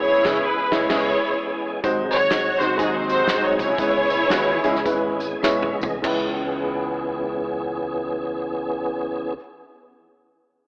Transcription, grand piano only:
0.25 0.38 C#3 loud
0.25 0.37 G#3 loud
0.25 0.37 B3 loud
0.25 0.37 C#4 loud
0.25 0.38 E4 loud
0.25 0.38 B4 loud
0.72 0.84 G#3 loud
0.72 0.84 B3 loud
0.72 0.84 C#4 loud
0.72 0.84 E4 loud
0.72 0.85 C#5 loud
0.89 1.09 G#3 loud
0.89 1.09 B3 loud
0.89 1.10 C#4 loud
0.89 1.10 E4 loud
0.89 1.10 G#4 loud
1.84 2.57 G#2 medium
1.84 2.14 G#3 medium
1.84 2.14 C4 medium
1.84 2.14 D#4 loud
1.84 2.14 F#4 medium
1.84 2.15 C5 loud
2.31 2.47 G#3 medium
2.31 2.47 C4 medium
2.31 2.47 D#4 medium
2.31 2.47 F#4 medium
2.31 2.47 D#5 medium
2.60 2.71 G#3 medium
2.60 2.71 C4 medium
2.60 2.71 D#4 medium
2.60 2.71 F#4 medium
2.60 2.71 C5 medium
2.78 3.10 G#3 medium
2.78 3.10 C4 medium
2.78 3.10 D#4 medium
2.78 3.10 F#4 medium
2.78 3.10 D#5 medium
3.28 3.60 G#3 medium
3.28 3.61 C4 medium
3.28 3.60 D#4 medium
3.28 3.60 F#4 medium
3.28 3.61 C5 medium
3.79 4.60 C#3 medium
3.79 4.12 G#3 medium
3.79 4.12 B3 medium
3.79 4.12 C#4 medium
3.79 4.12 E4 medium
3.79 4.12 B4 loud
4.31 4.49 G#3 medium
4.31 4.49 B3 medium
4.31 4.49 C#4 medium
4.31 4.48 E4 medium
4.31 4.49 F#4 loud
4.64 4.76 G#3 loud
4.64 4.75 B3 medium
4.64 4.76 C#4 medium
4.64 4.76 E4 medium
4.64 4.76 G#4 medium
4.85 5.22 G#3 loud
4.85 5.22 B3 loud
4.85 5.22 C#4 medium
4.85 5.22 E4 medium
4.85 5.22 B4 loud
5.43 5.82 G#3 medium
5.43 5.82 B3 medium
5.43 5.82 C#4 medium
5.43 5.82 E4 medium
5.43 5.82 C#5 loud
6.02 9.36 C#2 medium
6.02 9.34 G#3 medium
6.02 9.35 C#4 medium
6.02 9.37 E4 medium
6.07 9.38 B4 medium

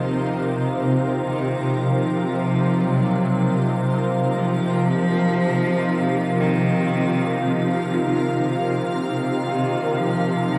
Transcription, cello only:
1.25 1.77 D#3 medium
1.75 2.26 F3 medium
2.27 2.81 F3 loud
2.79 3.83 F#3 medium
4.35 6.42 F3 loud
6.40 7.45 D#3 medium
7.43 8.19 F3 medium
9.46 9.99 D#3 medium
9.97 10.48 F3 medium
10.50 10.58 F3 medium

